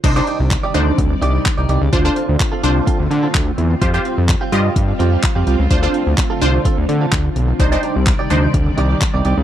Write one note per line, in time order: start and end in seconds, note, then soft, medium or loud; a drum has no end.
0.04 0.21 C2 loud
0.04 1.91 C3 medium
0.04 1.91 D#3 medium
0.04 1.91 G3 medium
0.04 0.14 D4 medium
0.04 0.14 D#4 medium
0.04 0.14 C5 medium
0.04 1.91 D5 medium
0.04 muted clean electric guitar stroke soft
0.04 kick loud
0.04 closed hi-hat medium
0.04 crash medium
0.16 0.64 D4 medium
0.16 0.65 D#4 medium
0.16 0.26 D#4 medium
0.16 0.27 G4 medium
0.16 0.65 C5 medium
0.16 0.27 D5 medium
0.27 0.38 D#4 medium
0.27 0.38 G4 medium
0.27 0.39 D5 medium
0.27 closed hi-hat soft
0.40 0.57 C2 medium
0.40 muted clean electric guitar stroke medium
0.51 muted clean electric guitar stroke soft
0.51 kick loud
0.51 clap loud
0.51 closed hi-hat medium
0.63 0.73 D#4 medium
0.63 0.74 G4 medium
0.63 0.74 D5 medium
0.74 0.92 D2 medium
0.74 1.52 D4 medium
0.74 1.52 D#4 medium
0.74 1.52 C5 medium
0.74 muted clean electric guitar stroke soft
0.74 closed hi-hat medium
0.87 muted clean electric guitar stroke soft
0.98 1.16 D2 medium
0.98 muted clean electric guitar stroke soft
0.98 kick loud
0.98 closed hi-hat medium
1.10 muted clean electric guitar stroke soft
1.22 1.39 C2 medium
1.22 1.34 D#4 medium
1.22 1.34 G4 medium
1.22 1.33 D5 medium
1.22 closed hi-hat medium
1.34 1.44 D#4 soft
1.34 1.44 G4 medium
1.34 1.44 D5 medium
1.45 muted clean electric guitar stroke soft
1.45 kick medium
1.45 clap loud
1.45 closed hi-hat medium
1.58 1.66 C2 medium
1.58 1.67 D#4 medium
1.58 1.68 G4 medium
1.58 1.67 D5 medium
1.69 1.78 C2 medium
1.69 1.83 D#4 medium
1.69 1.81 G4 medium
1.69 1.80 D5 medium
1.69 closed hi-hat medium
1.81 1.90 C#2 loud
1.81 muted clean electric guitar stroke soft
1.92 2.10 D2 loud
1.92 3.80 D3 medium
1.92 3.80 A3 medium
1.92 7.56 C4 medium
1.92 2.03 D4 medium
1.92 2.03 F4 medium
1.92 3.80 F4 medium
1.92 2.03 C5 medium
1.92 muted clean electric guitar stroke soft
1.92 kick loud
1.92 closed hi-hat medium
2.05 2.15 C4 medium
2.05 2.53 D4 medium
2.05 2.54 F4 medium
2.05 2.15 F4 medium
2.05 2.16 A4 medium
2.05 2.54 C5 medium
2.16 2.27 C4 medium
2.16 2.27 F4 medium
2.16 2.27 A4 medium
2.16 closed hi-hat soft
2.28 2.37 D2 loud
2.28 muted clean electric guitar stroke medium
2.39 muted clean electric guitar stroke soft
2.39 kick loud
2.39 clap loud
2.39 closed hi-hat medium
2.52 2.62 C4 medium
2.52 2.62 F4 medium
2.52 2.63 A4 medium
2.63 2.81 C2 medium
2.63 3.41 D4 medium
2.63 3.41 F4 medium
2.63 3.41 C5 loud
2.63 muted clean electric guitar stroke soft
2.63 closed hi-hat medium
2.76 muted clean electric guitar stroke medium
2.87 3.01 C4 medium
2.87 2.99 F4 medium
2.87 2.98 A4 medium
2.87 kick loud
2.87 closed hi-hat medium
2.99 3.08 D2 medium
2.99 muted clean electric guitar stroke soft
3.10 3.28 D3 loud
3.10 muted clean electric guitar stroke soft
3.10 closed hi-hat medium
3.23 3.33 C4 soft
3.23 3.33 F4 medium
3.23 3.33 A4 medium
3.34 3.52 D2 medium
3.34 muted clean electric guitar stroke soft
3.34 kick loud
3.34 clap loud
3.34 closed hi-hat medium
3.47 muted clean electric guitar stroke medium
3.58 3.75 E2 medium
3.58 closed hi-hat soft
3.71 muted clean electric guitar stroke soft
3.81 3.99 F2 loud
3.81 5.69 G3 medium
3.81 3.92 F4 medium
3.81 7.56 F4 medium
3.81 3.92 G4 medium
3.81 3.92 C5 medium
3.81 muted clean electric guitar stroke soft
3.81 kick loud
3.81 closed hi-hat medium
3.94 4.04 C4 medium
3.94 4.42 F4 medium
3.94 4.04 F4 medium
3.94 4.42 G4 medium
3.94 4.05 G4 medium
3.94 4.43 C5 medium
4.05 4.16 C4 medium
4.05 4.16 F4 medium
4.05 4.17 G4 medium
4.05 closed hi-hat soft
4.18 4.35 F2 medium
4.18 muted clean electric guitar stroke medium
4.29 muted clean electric guitar stroke soft
4.29 kick loud
4.29 clap loud
4.29 closed hi-hat medium
4.41 4.51 C4 medium
4.41 4.51 F4 medium
4.41 4.52 G4 medium
4.52 4.70 G2 medium
4.52 5.30 F4 medium
4.52 5.30 G4 medium
4.52 5.30 D#5 loud
4.52 muted clean electric guitar stroke soft
4.52 closed hi-hat medium
4.65 muted clean electric guitar stroke medium
4.76 4.93 G2 loud
4.76 muted clean electric guitar stroke soft
4.76 kick loud
4.76 closed hi-hat medium
4.88 muted clean electric guitar stroke soft
4.99 5.17 F2 medium
4.99 5.12 C4 medium
4.99 5.11 F4 medium
4.99 5.11 G4 medium
4.99 closed hi-hat medium
5.12 5.22 C4 medium
5.12 5.22 F4 medium
5.12 5.22 G4 medium
5.23 muted clean electric guitar stroke soft
5.23 kick loud
5.23 clap loud
5.23 closed hi-hat medium
5.35 5.44 F2 medium
5.35 5.45 C4 medium
5.35 5.46 F4 medium
5.35 5.45 G4 medium
5.46 5.56 C2 medium
5.46 5.60 C4 medium
5.46 5.59 F4 medium
5.46 5.58 G4 medium
5.46 closed hi-hat medium
5.59 5.68 C#2 medium
5.59 muted clean electric guitar stroke soft
5.70 5.88 D2 loud
5.70 7.58 D3 medium
5.70 7.58 A3 medium
5.70 5.81 D4 medium
5.70 5.81 F4 medium
5.70 5.81 C5 loud
5.70 muted clean electric guitar stroke soft
5.70 kick loud
5.70 closed hi-hat medium
5.83 5.92 C4 medium
5.83 6.31 D4 medium
5.83 5.93 F4 medium
5.83 6.31 F4 medium
5.83 5.94 A4 medium
5.83 6.32 C5 medium
5.94 6.05 C4 medium
5.94 6.05 F4 medium
5.94 6.05 A4 medium
5.94 closed hi-hat soft
6.06 6.15 D2 loud
6.06 muted clean electric guitar stroke medium
6.18 muted clean electric guitar stroke soft
6.18 kick loud
6.18 clap loud
6.18 closed hi-hat medium
6.30 6.40 C4 medium
6.30 6.41 F4 medium
6.30 6.41 A4 medium
6.41 6.59 C2 medium
6.41 7.19 D4 medium
6.41 7.19 F4 medium
6.41 7.19 C5 loud
6.41 muted clean electric guitar stroke soft
6.41 closed hi-hat medium
6.54 muted clean electric guitar stroke soft
6.65 6.79 C4 medium
6.65 6.77 F4 medium
6.65 6.76 A4 medium
6.65 kick loud
6.65 closed hi-hat medium
6.77 6.86 D2 medium
6.77 muted clean electric guitar stroke soft
6.89 7.06 D3 medium
6.89 muted clean electric guitar stroke soft
6.89 closed hi-hat medium
7.01 7.11 C4 medium
7.01 7.11 F4 medium
7.01 7.11 A4 medium
7.12 7.30 D2 medium
7.12 muted clean electric guitar stroke soft
7.12 kick loud
7.12 clap loud
7.12 closed hi-hat medium
7.25 muted clean electric guitar stroke soft
7.36 7.53 B1 medium
7.36 closed hi-hat soft
7.48 muted clean electric guitar stroke soft
7.59 7.77 C2 loud
7.59 9.43 C3 medium
7.59 9.43 D#3 medium
7.59 9.43 G3 medium
7.59 7.70 D4 medium
7.59 7.70 D#4 medium
7.59 7.70 C5 medium
7.59 9.43 D5 medium
7.59 muted clean electric guitar stroke soft
7.59 kick loud
7.59 closed hi-hat medium
7.72 8.20 D4 medium
7.72 8.20 D#4 medium
7.72 7.81 D#4 medium
7.72 7.82 G4 medium
7.72 8.21 C5 medium
7.72 7.83 D5 medium
7.83 7.94 D#4 medium
7.83 7.94 G4 medium
7.83 7.94 D5 medium
7.83 closed hi-hat soft
7.95 8.13 C2 medium
7.95 muted clean electric guitar stroke soft
8.07 muted clean electric guitar stroke soft
8.07 kick loud
8.07 clap loud
8.07 closed hi-hat medium
8.19 8.29 D#4 medium
8.19 8.29 G4 medium
8.19 8.30 D5 medium
8.30 8.48 D2 medium
8.30 9.08 D4 medium
8.30 9.08 D#4 medium
8.30 9.08 C5 loud
8.30 muted clean electric guitar stroke soft
8.30 closed hi-hat medium
8.43 muted clean electric guitar stroke soft
8.54 8.71 D2 loud
8.54 muted clean electric guitar stroke soft
8.54 kick loud
8.54 closed hi-hat medium
8.66 muted clean electric guitar stroke soft
8.77 8.95 C2 medium
8.77 8.90 D#4 medium
8.77 8.89 G4 medium
8.77 8.89 D5 loud
8.77 closed hi-hat medium
8.90 9.00 D#4 medium
8.90 9.00 G4 medium
8.90 9.00 D5 medium
9.01 muted clean electric guitar stroke soft
9.01 kick loud
9.01 clap loud
9.01 closed hi-hat medium
9.14 9.22 C2 medium
9.14 9.23 D#4 soft
9.14 9.24 G4 soft
9.14 9.23 D5 medium
9.25 9.34 C2 medium
9.25 9.38 D#4 medium
9.25 9.37 G4 medium
9.25 9.36 D5 medium
9.25 closed hi-hat soft
9.37 9.43 C#2 loud
9.37 muted clean electric guitar stroke soft